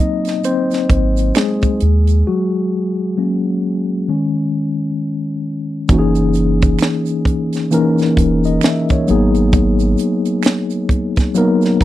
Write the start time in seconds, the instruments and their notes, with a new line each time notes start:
Already playing: tine electric piano F#3 A#3 C4 D#4 D#5
0.00 closed hi-hat
0.25 snare, closed hi-hat, shaker
0.44 tine electric piano C4 C5, closed hi-hat, shaker
0.71 snare, closed hi-hat, shaker
0.89 analog synth bass G#1, kick, closed hi-hat
1.17 closed hi-hat, shaker
1.35 tine electric piano G#3 G#4, finger snap, snare, closed hi-hat, shaker
1.62 kick, closed hi-hat, shaker
1.80 analog synth bass D#2, closed hi-hat
2.07 closed hi-hat, shaker
2.27 tine electric piano F#3 F#4
3.18 tine electric piano F#3 A#3 C#4
4.08 tine electric piano D#3 G#3 C#4
5.89 analog synth bass F#1, tine electric piano E3 A#3 C#4 D#4 F#4, kick, closed hi-hat, shaker
5.99 tine electric piano G#4
6.15 closed hi-hat, shaker
6.34 closed hi-hat, shaker
6.62 kick, closed hi-hat, shaker
6.79 finger snap, snare, closed hi-hat, shaker
7.06 closed hi-hat, shaker
7.25 kick, closed hi-hat
7.53 snare, closed hi-hat, shaker
7.71 tine electric piano E3 A#3 C#4 D#4 A#4, closed hi-hat, shaker
7.98 snare, closed hi-hat, shaker
8.17 analog synth bass E1, kick, closed hi-hat
8.44 tine electric piano D#5, closed hi-hat, shaker
8.61 tine electric piano E5, finger snap, snare, closed hi-hat, shaker
8.89 tine electric piano C#5, kick, closed hi-hat, shaker
9.07 analog synth bass G#1, tine electric piano F#3 A#3 B3 D#4 G#4, closed hi-hat, shaker
9.35 closed hi-hat, shaker
9.53 kick, closed hi-hat, shaker
9.79 shaker
9.98 closed hi-hat, shaker
10.25 closed hi-hat, shaker
10.43 finger snap, snare, closed hi-hat, shaker
10.70 closed hi-hat, shaker
10.89 kick, closed hi-hat
11.16 kick, snare, closed hi-hat, shaker
11.34 tine electric piano F#3 A#3 B3 D#4 A#4, closed hi-hat, shaker
11.62 snare, closed hi-hat, shaker
11.81 kick